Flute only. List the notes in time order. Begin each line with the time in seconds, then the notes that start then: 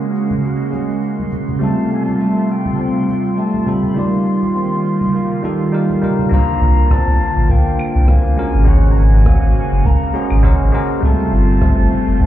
1.63 A5
1.93 A5
2.51 G5
2.74 A5
2.81 G5
3.39 A5
3.68 B5
3.98 C6
6.33 A#5
6.92 A5
7.51 G5
8.09 G#5
8.68 F#5
8.91 A#5
8.97 G#5
9.85 A#5
10.75 G#5
11.04 A5
12.22 A5